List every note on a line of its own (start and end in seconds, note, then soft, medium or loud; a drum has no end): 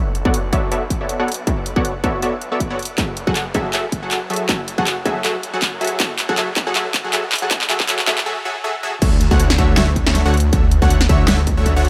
0.00 0.23 B1 medium
0.15 closed hi-hat medium
0.25 0.51 B1 medium
0.25 0.42 B3 medium
0.25 0.42 F#4 medium
0.25 0.42 A4 medium
0.25 0.42 C#5 medium
0.25 0.42 D5 medium
0.25 0.42 F#5 loud
0.25 kick loud
0.34 closed hi-hat medium
0.53 0.70 B1 loud
0.53 0.70 B3 medium
0.53 0.70 F#4 medium
0.53 0.70 A4 medium
0.53 0.70 C#5 medium
0.53 0.70 D5 medium
0.53 0.70 E5 loud
0.53 kick loud
0.53 closed hi-hat medium
0.71 0.99 B1 loud
0.71 0.83 B3 medium
0.71 0.83 F#4 medium
0.71 0.83 A4 medium
0.71 0.83 C#5 medium
0.71 0.83 D5 medium
0.71 0.83 E5 medium
0.71 closed hi-hat medium
0.90 kick medium
0.90 closed hi-hat medium
1.01 1.18 B1 medium
1.01 1.17 B3 medium
1.01 1.17 F#4 medium
1.01 1.17 A4 medium
1.01 1.17 C#5 medium
1.01 1.17 D5 medium
1.01 1.17 E5 medium
1.09 closed hi-hat medium
1.20 1.45 B1 medium
1.20 1.30 B3 loud
1.20 1.30 F#4 loud
1.20 1.30 A4 loud
1.20 1.30 C#5 medium
1.20 1.30 D5 medium
1.20 1.30 F#5 loud
1.28 closed hi-hat soft
1.32 closed hi-hat medium
1.34 closed hi-hat medium
1.47 1.74 B1 loud
1.47 1.59 B3 medium
1.47 1.59 F#4 medium
1.47 1.59 A4 medium
1.47 1.59 C#5 medium
1.47 1.59 D5 medium
1.47 1.59 E5 medium
1.47 kick loud
1.47 closed hi-hat medium
1.66 closed hi-hat medium
1.76 2.02 B1 medium
1.76 1.93 B3 loud
1.76 1.93 F#4 medium
1.76 1.93 A4 medium
1.76 1.93 C#5 medium
1.76 1.93 D5 medium
1.76 1.93 F#5 loud
1.76 kick loud
1.85 closed hi-hat medium
2.04 2.21 B1 medium
2.04 2.21 B3 medium
2.04 2.21 F#4 medium
2.04 2.21 A4 medium
2.04 2.21 C#5 medium
2.04 2.21 D5 medium
2.04 2.21 E5 medium
2.04 kick loud
2.04 closed hi-hat medium
2.22 2.50 B1 loud
2.22 2.34 B3 medium
2.22 2.34 F#4 medium
2.22 2.34 A4 medium
2.22 2.34 C#5 medium
2.22 2.34 D5 medium
2.22 2.34 E5 medium
2.22 closed hi-hat medium
2.41 closed hi-hat medium
2.52 2.69 B1 loud
2.52 2.68 B3 medium
2.52 2.68 F#4 medium
2.52 2.68 A4 medium
2.52 2.68 C#5 medium
2.52 2.68 D5 medium
2.52 2.68 E5 medium
2.60 kick medium
2.60 closed hi-hat medium
2.70 2.76 B1 medium
2.70 2.78 B3 loud
2.70 2.78 F#4 medium
2.70 2.78 A4 medium
2.70 2.78 C#5 loud
2.70 2.78 D5 loud
2.70 2.78 F#5 loud
2.79 closed hi-hat soft
2.83 closed hi-hat medium
2.85 closed hi-hat medium
2.98 3.25 F#1 loud
2.98 3.09 F#3 medium
2.98 3.09 F#4 medium
2.98 3.09 G#4 medium
2.98 3.10 A4 medium
2.98 3.09 E5 medium
2.98 kick loud
2.98 clap soft
2.98 closed hi-hat medium
3.17 closed hi-hat medium
3.27 3.53 F#1 medium
3.27 3.44 F#3 medium
3.27 3.44 F#4 medium
3.27 3.44 G#4 medium
3.27 3.44 A4 medium
3.27 3.44 F#5 medium
3.27 kick loud
3.36 clap medium
3.36 closed hi-hat medium
3.54 3.72 F#1 loud
3.54 3.72 F#3 medium
3.54 3.72 F#4 medium
3.54 3.72 G#4 medium
3.54 3.71 A4 medium
3.54 3.72 E5 medium
3.54 kick loud
3.54 closed hi-hat medium
3.73 4.01 F#1 loud
3.73 3.85 F#3 medium
3.73 3.85 F#4 medium
3.73 3.85 G#4 medium
3.73 3.85 A4 medium
3.73 3.85 E5 medium
3.73 clap soft
3.73 closed hi-hat medium
3.92 kick medium
3.92 closed hi-hat medium
4.03 4.28 F#1 loud
4.03 4.20 F#3 medium
4.03 4.20 F#4 medium
4.03 4.20 G#4 medium
4.03 4.20 A4 medium
4.03 4.20 F#5 medium
4.11 clap medium
4.11 closed hi-hat medium
4.30 4.47 F#1 loud
4.30 4.47 F#3 medium
4.30 4.47 F#4 medium
4.30 4.47 G#4 medium
4.30 4.47 A4 medium
4.30 4.47 E5 medium
4.30 closed hi-hat soft
4.34 closed hi-hat medium
4.36 closed hi-hat medium
4.49 4.76 F#1 loud
4.49 4.61 F#3 medium
4.49 4.61 F#4 medium
4.49 4.61 G#4 medium
4.49 4.61 A4 medium
4.49 4.61 E5 medium
4.49 kick loud
4.49 clap medium
4.49 closed hi-hat medium
4.68 closed hi-hat medium
4.78 5.04 F#1 loud
4.78 4.95 F#3 medium
4.78 4.95 F#4 medium
4.78 4.95 G#4 medium
4.78 4.95 A4 medium
4.78 4.95 F#5 loud
4.78 kick loud
4.87 clap medium
4.87 closed hi-hat medium
5.06 5.23 F#1 loud
5.06 5.22 F#3 medium
5.06 5.22 F#4 medium
5.06 5.22 G#4 medium
5.06 5.22 A4 medium
5.06 5.22 E5 medium
5.06 kick loud
5.06 closed hi-hat medium
5.24 5.55 F#1 loud
5.24 5.36 F#3 medium
5.24 5.36 F#4 medium
5.24 5.36 G#4 medium
5.24 5.36 A4 medium
5.24 5.36 E5 medium
5.24 clap medium
5.24 closed hi-hat medium
5.43 closed hi-hat medium
5.53 5.82 F#2 medium
5.53 5.71 F#3 medium
5.53 5.71 F#4 medium
5.53 5.71 G#4 medium
5.53 5.71 A4 medium
5.53 5.71 F#5 loud
5.62 kick medium
5.62 clap medium
5.62 closed hi-hat medium
5.81 5.98 A1 loud
5.81 5.98 F#3 medium
5.81 5.98 F#4 medium
5.81 5.98 G#4 medium
5.81 5.98 A4 medium
5.81 5.98 E5 medium
5.81 closed hi-hat soft
5.84 closed hi-hat medium
5.87 closed hi-hat medium
6.00 6.27 A1 loud
6.00 6.11 F#3 medium
6.00 6.11 F#4 medium
6.00 6.11 G#4 medium
6.00 6.11 A4 medium
6.00 6.11 E5 medium
6.00 kick loud
6.00 clap medium
6.00 closed hi-hat medium
6.19 clap medium
6.19 closed hi-hat medium
6.29 6.36 F#3 medium
6.29 6.36 F#4 medium
6.29 6.36 G#4 medium
6.29 6.36 A4 medium
6.29 6.36 F#5 loud
6.29 kick loud
6.37 6.65 A1 loud
6.37 6.49 F#3 medium
6.37 6.49 F#4 medium
6.37 6.49 G#4 medium
6.37 6.49 A4 medium
6.37 6.49 E5 medium
6.37 clap medium
6.37 closed hi-hat medium
6.56 kick loud
6.56 clap medium
6.56 closed hi-hat medium
6.67 6.74 A1 loud
6.67 6.74 F#3 medium
6.67 6.74 F#4 medium
6.67 6.74 G#4 medium
6.67 6.74 A4 medium
6.67 6.74 F#5 loud
6.75 7.02 A1 loud
6.75 6.87 F#3 medium
6.75 6.87 F#4 medium
6.75 6.87 G#4 medium
6.75 6.87 A4 medium
6.75 6.87 E5 medium
6.75 clap medium
6.75 closed hi-hat medium
6.94 kick medium
6.94 clap medium
6.94 closed hi-hat medium
7.04 7.11 A1 loud
7.04 7.12 F#3 medium
7.04 7.12 F#4 medium
7.04 7.12 G#4 medium
7.04 7.12 A4 medium
7.04 7.12 F#5 loud
7.13 7.40 A1 loud
7.13 7.25 F#3 medium
7.13 7.25 F#4 medium
7.13 7.25 G#4 medium
7.13 7.25 A4 medium
7.13 7.25 E5 medium
7.13 clap medium
7.13 closed hi-hat medium
7.32 clap medium
7.32 closed hi-hat soft
7.36 closed hi-hat medium
7.38 7.49 A1 medium
7.38 7.49 F#3 medium
7.38 7.50 F#4 medium
7.38 7.49 G#4 medium
7.38 7.49 A4 medium
7.38 7.50 F#5 loud
7.38 closed hi-hat medium
7.51 7.68 A1 loud
7.51 7.62 E5 medium
7.51 kick loud
7.51 clap medium
7.51 closed hi-hat medium
7.61 clap medium
7.69 7.87 A1 loud
7.69 7.81 F#3 medium
7.69 7.81 F#4 medium
7.69 7.81 G#4 medium
7.69 7.81 A4 medium
7.69 7.81 E5 medium
7.69 clap medium
7.69 closed hi-hat medium
7.80 kick loud
7.80 clap medium
7.88 8.06 A1 loud
7.88 8.00 F#3 medium
7.88 8.00 F#4 medium
7.88 8.00 G#4 medium
7.88 8.00 A4 medium
7.88 8.00 E5 loud
7.88 clap loud
7.88 closed hi-hat medium
7.99 clap medium
8.07 8.25 A1 loud
8.07 8.19 F#3 medium
8.07 8.19 F#4 medium
8.07 8.19 G#4 medium
8.07 8.19 A4 medium
8.07 8.19 E5 loud
8.07 kick loud
8.07 clap loud
8.07 closed hi-hat medium
8.18 clap medium
8.26 8.38 F#3 medium
8.26 8.38 F#4 medium
8.26 8.38 G#4 medium
8.26 8.38 A4 medium
8.26 8.38 E5 medium
8.45 8.57 F#3 medium
8.45 8.57 F#4 medium
8.45 8.57 G#4 medium
8.45 8.57 A4 medium
8.45 8.57 E5 medium
8.64 8.76 F#3 medium
8.64 8.76 F#4 medium
8.64 8.76 G#4 medium
8.64 8.76 A4 medium
8.64 8.76 E5 medium
8.83 8.95 F#3 medium
8.83 8.95 F#4 medium
8.83 8.95 G#4 medium
8.83 8.95 A4 medium
8.83 8.95 E5 medium
9.02 9.29 D2 loud
9.02 9.13 D3 medium
9.02 9.13 A3 medium
9.02 9.13 F#4 medium
9.02 9.13 C#5 medium
9.02 9.13 E5 medium
9.02 kick loud
9.02 closed hi-hat medium
9.02 crash loud
9.21 closed hi-hat medium
9.31 9.57 D2 medium
9.31 9.48 D3 loud
9.31 9.48 A3 medium
9.31 9.48 F#4 medium
9.31 9.48 C#5 medium
9.31 9.48 F#5 loud
9.31 kick loud
9.40 closed hi-hat medium
9.50 snare medium
9.58 9.76 D2 loud
9.58 9.75 D3 medium
9.58 9.75 A3 medium
9.58 9.75 F#4 medium
9.58 9.75 C#5 medium
9.58 9.75 E5 loud
9.58 kick loud
9.58 closed hi-hat medium
9.77 10.04 D2 loud
9.77 9.89 D3 medium
9.77 9.89 A3 medium
9.77 9.89 F#4 medium
9.77 9.89 C#5 medium
9.77 9.89 E5 loud
9.77 snare loud
9.77 closed hi-hat medium
9.96 kick medium
9.96 closed hi-hat medium
10.06 10.23 D2 loud
10.06 10.23 D3 medium
10.06 10.23 A3 medium
10.06 10.23 F#4 medium
10.06 10.23 C#5 medium
10.06 10.23 E5 medium
10.06 snare medium
10.15 snare medium
10.15 closed hi-hat medium
10.25 10.51 D2 loud
10.25 10.35 D3 loud
10.25 10.35 A3 medium
10.25 10.35 F#4 medium
10.25 10.35 C#5 loud
10.25 10.35 F#5 loud
10.34 closed hi-hat soft
10.37 closed hi-hat medium
10.40 closed hi-hat medium
10.53 10.80 D2 loud
10.53 10.64 D3 medium
10.53 10.64 A3 medium
10.53 10.64 F#4 medium
10.53 10.64 C#5 medium
10.53 10.64 E5 medium
10.53 kick loud
10.53 closed hi-hat medium
10.71 closed hi-hat medium
10.82 11.08 D2 loud
10.82 10.99 D3 loud
10.82 10.99 A3 medium
10.82 10.99 F#4 medium
10.82 10.99 C#5 medium
10.82 10.99 F#5 loud
10.82 kick loud
10.90 closed hi-hat medium
11.01 snare medium
11.09 11.27 D2 medium
11.09 11.26 D3 medium
11.09 11.26 A3 medium
11.09 11.26 F#4 medium
11.09 11.26 C#5 medium
11.09 11.26 E5 loud
11.09 kick loud
11.09 closed hi-hat medium
11.28 11.55 D2 loud
11.28 11.40 D3 medium
11.28 11.40 A3 medium
11.28 11.40 F#4 medium
11.28 11.40 C#5 medium
11.28 11.40 E5 medium
11.28 snare loud
11.28 closed hi-hat medium
11.47 kick medium
11.47 closed hi-hat medium
11.57 11.74 D2 medium
11.57 11.74 D3 medium
11.57 11.74 A3 medium
11.57 11.74 F#4 medium
11.57 11.74 C#5 medium
11.57 11.74 E5 medium
11.66 kick medium
11.66 closed hi-hat medium
11.76 11.89 D2 loud
11.76 11.86 D3 loud
11.76 11.86 A3 loud
11.76 11.86 F#4 medium
11.76 11.86 C#5 medium
11.76 11.86 F#5 loud
11.85 closed hi-hat medium